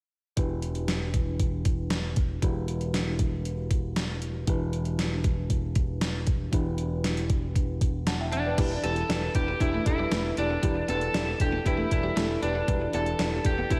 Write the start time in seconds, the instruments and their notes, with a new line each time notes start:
0.37 picked electric bass E1, fm electric piano E3 D4 E4 G4 B4, kick, closed hi-hat
0.62 closed hi-hat
0.75 closed hi-hat
0.88 snare, closed hi-hat
1.14 kick, closed hi-hat
1.40 kick, closed hi-hat
1.65 kick, closed hi-hat
1.90 snare, closed hi-hat
2.16 kick, closed hi-hat
2.42 picked electric bass E1, fm electric piano E3 D4 E4 F#4 B4, kick, closed hi-hat
2.50 fm electric piano G4
2.68 closed hi-hat
2.81 closed hi-hat
2.94 snare, closed hi-hat
3.19 kick, closed hi-hat
3.45 closed hi-hat
3.71 kick, closed hi-hat
3.96 snare, closed hi-hat
4.22 closed hi-hat
4.47 picked electric bass E1, fm electric piano E3 D4 E4 G4 B4, kick, closed hi-hat
4.73 closed hi-hat
4.85 closed hi-hat
4.99 snare, closed hi-hat
5.24 kick, closed hi-hat
5.50 kick, closed hi-hat
5.75 kick, closed hi-hat
6.01 snare, closed hi-hat
6.27 kick, closed hi-hat
6.52 picked electric bass E1, fm electric piano E3 D4 E4 G4 B4, kick, closed hi-hat
6.78 closed hi-hat
7.04 snare, closed hi-hat
7.17 closed hi-hat
7.30 kick, closed hi-hat
7.56 kick, closed hi-hat
7.81 kick, closed hi-hat
8.07 fm electric piano F#5 A5, snare, closed hi-hat
8.20 fm electric piano E5 G5
8.32 lead electric guitar D4, fm electric piano E5, closed hi-hat
8.46 fm electric piano B4 D5
8.58 picked electric bass E1, fm electric piano E3 D4 E4 G4 B4, clean electric guitar G3, kick, closed hi-hat, crash
8.71 muted clean electric guitar stroke
8.83 picked electric bass E1, clean electric guitar B3, fm electric piano D4 E4 G4 B4, lead electric guitar A4, closed hi-hat
8.96 closed hi-hat
9.09 picked electric bass E1, fm electric piano D4 E4 G4 B4, clean electric guitar D4, snare, closed hi-hat
9.22 muted clean electric guitar stroke
9.35 picked electric bass E1, fm electric piano D4 E4 G4 B4, lead electric guitar G4, kick, closed hi-hat
9.48 clean electric guitar B3
9.60 picked electric bass E1, fm electric piano D4 E4 G4 B4, lead electric guitar E4, kick, closed hi-hat
9.74 clean electric guitar A3
9.86 picked electric bass E1, fm electric piano D4 E4 G4 A4, lead electric guitar E4, muted clean electric guitar stroke, kick, closed hi-hat
9.99 clean electric guitar G3
10.12 picked electric bass E1, clean electric guitar A3, fm electric piano D4 E4 G4 B4, snare, closed hi-hat
10.37 picked electric bass E1, fm electric piano D4 E4 G4 D5, lead electric guitar D4, muted clean electric guitar stroke, closed hi-hat
10.50 clean electric guitar B3
10.63 picked electric bass E1, fm electric piano E3 D4 E4 G4 B4, clean electric guitar G3, kick, closed hi-hat
10.75 muted clean electric guitar stroke
10.88 picked electric bass E1, clean electric guitar B3, fm electric piano D4 E4 G4 B4, lead electric guitar A4, closed hi-hat
11.01 closed hi-hat
11.14 picked electric bass E1, clean electric guitar D4, fm electric piano D4 E4 G4 D5, snare, closed hi-hat
11.27 muted clean electric guitar stroke
11.40 picked electric bass E1, fm electric piano D4 E4 G4 A4, lead electric guitar G4, kick, closed hi-hat
11.52 clean electric guitar B3
11.66 picked electric bass E1, fm electric piano D4 E4 G4 B4, lead electric guitar E4, kick, closed hi-hat
11.77 clean electric guitar A3
11.91 picked electric bass E1, fm electric piano D4 E4 G4 A4, lead electric guitar E4, muted clean electric guitar stroke, kick, closed hi-hat
12.03 clean electric guitar G3
12.16 picked electric bass E1, clean electric guitar A3, fm electric piano D4 E4 G4 A4, snare, closed hi-hat
12.42 picked electric bass E1, lead electric guitar D4, fm electric piano D4 E4 G4 B4, muted clean electric guitar stroke, closed hi-hat
12.55 clean electric guitar B3
12.68 picked electric bass E1, fm electric piano E3 D4 E4 G4 B4, clean electric guitar G3, kick, closed hi-hat
12.82 muted clean electric guitar stroke
12.93 picked electric bass E1, clean electric guitar B3, fm electric piano D4 E4 G4 D5, lead electric guitar A4, closed hi-hat
13.06 closed hi-hat
13.19 picked electric bass E1, fm electric piano D4 E4 G4 B4, clean electric guitar D4, snare, closed hi-hat
13.33 muted clean electric guitar stroke
13.44 picked electric bass E1, fm electric piano D4 E4 G4 A4, lead electric guitar G4, kick, closed hi-hat
13.58 clean electric guitar B3
13.70 picked electric bass E1, fm electric piano D4 E4 G4 B4, lead electric guitar E4, kick, closed hi-hat